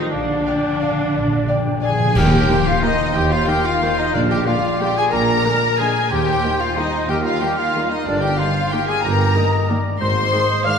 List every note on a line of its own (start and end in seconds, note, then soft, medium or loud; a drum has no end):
0.00 0.11 D#3 medium
0.00 0.12 D#4 medium
0.11 0.40 A#1 medium
0.11 0.18 A#2 soft
0.11 1.99 D3 medium
0.11 1.96 D4 medium
0.11 1.95 D5 medium
0.11 1.66 D5 medium
0.11 0.42 F5 soft
0.19 0.26 A#2 soft
0.27 0.33 A#2 soft
0.34 0.41 A#2 soft
0.42 0.50 A#2 soft
0.42 0.54 D5 soft
0.42 0.83 G5 medium
0.46 0.54 F5 soft
0.51 0.57 A#2 soft
0.58 0.66 A#2 soft
0.67 0.74 A#2 soft
0.75 0.81 A#2 soft
0.81 0.89 A#2 soft
0.81 0.89 D5 medium
0.81 0.89 F5 soft
0.81 1.18 F5 medium
0.91 0.97 A#2 soft
0.98 1.04 A#2 soft
1.06 1.12 A#2 medium
1.13 1.42 A#1 medium
1.13 1.19 A#2 medium
1.13 1.51 D5 medium
1.21 1.27 A#2 medium
1.28 1.34 A#2 medium
1.35 1.41 A#2 medium
1.42 1.50 A#2 medium
1.48 1.58 A#2 medium
1.48 1.56 D5 soft
1.48 1.56 F5 soft
1.48 1.82 G5 medium
1.59 1.66 A#2 medium
1.67 1.74 A#2 medium
1.75 1.82 A#2 medium
1.81 1.90 A#2 medium
1.81 2.13 G#4 medium
1.81 1.89 D5 soft
1.81 1.91 F5 soft
1.81 2.17 G#5 medium
1.81 2.14 G#5 medium
1.91 1.98 A#2 medium
2.00 2.05 A#2 medium
2.06 2.13 A#2 medium
2.15 2.43 D#2 medium
2.15 2.63 D#3 loud
2.15 2.68 G4 medium
2.15 2.66 G4 medium
2.15 2.51 A#4 medium
2.15 2.66 G5 medium
2.15 2.67 G5 loud
2.15 concert bass drum medium
2.15 crash medium
2.49 2.57 D#3 medium
2.49 2.61 A#3 medium
2.49 2.57 A#3 medium
2.49 2.61 D#4 medium
2.49 3.50 C5 medium
2.66 2.83 F4 medium
2.66 2.85 F4 medium
2.66 2.83 F5 medium
2.66 2.85 F5 medium
2.83 2.91 D#3 medium
2.83 2.91 A#3 medium
2.83 2.96 A#3 medium
2.83 3.18 D#4 medium
2.83 3.15 D#4 medium
2.83 2.96 D#4 medium
2.83 3.14 D#5 medium
2.83 3.17 D#5 medium
3.15 3.42 D#2 medium
3.15 3.43 D#2 medium
3.15 3.31 G4 medium
3.15 3.33 G4 medium
3.15 3.31 G5 medium
3.15 3.34 G5 medium
3.31 3.48 F4 medium
3.31 3.51 F4 medium
3.31 3.48 F5 medium
3.31 3.51 F5 medium
3.48 3.56 D#3 medium
3.48 3.56 A#3 medium
3.48 3.61 A#3 medium
3.48 3.61 D#4 medium
3.48 3.65 G4 medium
3.48 3.68 G4 medium
3.48 3.82 A#4 medium
3.48 3.65 G5 loud
3.48 3.67 G5 medium
3.65 3.98 F4 medium
3.65 4.01 F4 medium
3.65 3.99 F5 medium
3.65 3.98 F5 medium
3.82 3.90 D#3 medium
3.82 3.94 A#3 medium
3.82 3.91 A#3 medium
3.82 3.95 D#4 medium
3.82 4.15 C5 medium
3.98 4.14 D#4 medium
3.98 4.15 D#4 medium
3.98 4.17 D#5 medium
3.98 4.15 D#5 medium
4.14 4.41 A#1 medium
4.14 4.60 A#2 loud
4.14 4.41 A#2 medium
4.14 4.30 D4 medium
4.14 4.22 D4 medium
4.14 4.48 A#4 medium
4.14 4.21 D5 medium
4.14 4.30 D5 medium
4.30 4.46 G4 medium
4.30 4.49 G4 medium
4.30 4.49 G5 medium
4.30 4.37 G5 medium
4.46 4.54 D3 medium
4.46 4.60 G#3 medium
4.46 4.55 A#3 medium
4.46 4.60 D4 medium
4.46 4.79 F4 medium
4.46 4.83 F4 medium
4.46 5.12 D5 medium
4.46 4.82 F5 medium
4.46 4.80 F5 medium
4.80 4.89 D3 medium
4.80 4.93 G#3 medium
4.80 4.89 A#3 medium
4.80 4.93 D4 medium
4.80 4.96 G4 medium
4.80 4.98 G4 medium
4.80 4.97 G5 medium
4.96 5.12 G#4 medium
4.96 5.14 G#4 medium
4.96 5.03 G#5 loud
4.96 5.15 G#5 medium
5.12 5.39 A#1 medium
5.12 5.39 A#2 medium
5.12 5.78 A#4 medium
5.12 5.80 A#4 medium
5.12 5.47 D5 medium
5.12 5.77 A#5 loud
5.12 5.49 A#5 medium
5.45 5.53 D3 medium
5.45 5.58 G#3 medium
5.45 5.53 A#3 medium
5.45 5.58 D4 medium
5.45 6.09 A#4 medium
5.78 5.87 D3 medium
5.78 5.91 G#3 medium
5.78 5.87 A#3 medium
5.78 5.91 D4 medium
5.78 6.10 G#4 medium
5.78 6.13 G#5 medium
5.78 6.10 G#5 medium
6.10 6.37 D#2 medium
6.10 6.60 G4 medium
6.10 6.62 G4 medium
6.10 7.12 C5 medium
6.10 6.61 G5 loud
6.10 6.62 G5 medium
6.42 6.52 D#3 medium
6.42 6.56 G3 medium
6.42 6.52 A#3 medium
6.42 6.55 D#4 medium
6.60 6.79 F4 medium
6.60 6.77 F4 medium
6.60 6.80 F5 medium
6.60 6.77 F5 medium
6.77 6.85 D#3 medium
6.77 6.89 G3 medium
6.77 6.86 A#3 medium
6.77 7.09 D#4 medium
6.77 6.89 D#4 medium
6.77 7.08 D#5 medium
6.77 7.11 D#5 medium
7.09 7.35 D#2 medium
7.09 7.25 G4 medium
7.09 7.16 G4 medium
7.09 8.07 A#4 medium
7.09 7.15 G5 medium
7.09 7.27 G5 medium
7.25 7.41 F4 medium
7.25 7.44 F4 medium
7.25 7.41 F5 medium
7.25 7.44 F5 medium
7.41 7.50 D#3 medium
7.41 7.53 G3 medium
7.41 7.50 A#3 medium
7.41 7.53 D#4 medium
7.41 7.58 G4 medium
7.41 7.58 G5 medium
7.41 7.60 G5 medium
7.58 7.90 F4 medium
7.58 7.93 F4 medium
7.58 7.90 F5 medium
7.58 7.92 F5 medium
7.75 7.83 D#3 medium
7.75 7.87 G3 medium
7.75 7.83 A#3 medium
7.75 7.87 D#4 medium
7.90 8.06 D#4 medium
7.90 8.08 D#4 medium
7.90 8.05 D#5 medium
7.90 8.06 D#5 medium
8.05 8.33 G1 medium
8.05 8.33 G2 medium
8.05 8.21 D4 medium
8.05 8.23 D4 medium
8.05 8.40 A#4 medium
8.05 8.22 D5 medium
8.21 8.38 G4 medium
8.21 8.40 G4 medium
8.21 8.38 G5 medium
8.38 8.47 D#3 medium
8.38 8.52 G3 medium
8.38 8.47 A#3 medium
8.38 8.52 D#4 medium
8.38 8.74 F4 medium
8.38 8.72 F4 medium
8.38 8.74 C5 medium
8.38 8.72 F5 medium
8.72 8.81 D#3 medium
8.72 8.85 G3 medium
8.72 8.81 A#3 medium
8.72 8.84 D#4 medium
8.72 8.90 G4 medium
8.72 8.89 G4 medium
8.72 9.06 A#4 medium
8.72 8.88 G5 medium
8.72 8.90 G5 medium
8.88 9.04 G#4 medium
8.88 9.03 G#5 medium
8.88 9.06 G#5 medium
9.03 9.30 G1 medium
9.03 9.30 G2 medium
9.03 9.38 G4 medium
9.03 9.69 A#4 medium
9.03 9.68 A#4 medium
9.03 9.69 A#5 medium
9.36 9.44 D#3 medium
9.36 9.48 G3 medium
9.36 9.44 A#3 medium
9.36 9.48 D#4 medium
9.36 9.71 D#5 medium
9.69 9.77 D#3 medium
9.69 9.80 G3 medium
9.69 9.77 A#3 medium
9.69 9.80 D#4 medium
9.69 10.00 D5 medium
10.00 10.27 G#1 medium
10.00 10.27 G#2 medium
10.00 10.62 C5 medium
10.00 10.33 C5 medium
10.00 10.67 C5 medium
10.00 10.61 C6 medium
10.00 10.62 C6 loud
10.32 10.40 D#3 medium
10.32 10.40 G#3 medium
10.32 10.44 G#3 medium
10.32 10.44 D#4 medium
10.32 10.68 D#5 medium
10.65 10.74 D#3 medium
10.65 10.77 G#3 medium
10.65 10.74 G#3 medium
10.65 10.77 D#4 medium
10.65 10.79 D5 medium
10.65 10.79 F5 medium
10.65 10.79 F6 medium
10.65 10.79 F6 loud